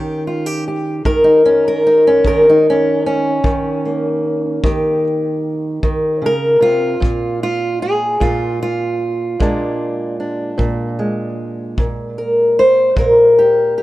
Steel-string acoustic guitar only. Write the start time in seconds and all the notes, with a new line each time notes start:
Already playing: D#3 C#4 G4
0.27 F4
0.46 G4
0.68 G4
1.05 D#3 A#4
1.24 D#4
1.45 C#4
1.68 A#4
1.87 D#4
2.07 C#4
2.26 D#3 A#4
2.50 D#4
2.70 C#4
3.06 C#4
3.44 D#3
3.85 A#3
4.64 D#3 G4
5.83 D#3
6.22 C#3
6.26 A#4
6.61 C3 F4
7.00 A#2
7.43 F4
7.82 G#4
8.20 A#2 F4
8.63 F4
9.40 A#2 G#3 D4
10.20 D4
10.58 A#2
10.99 G#3
11.79 A#2
12.18 A#4
12.59 C5
12.96 A#2 A#4
13.39 G4
13.78 G4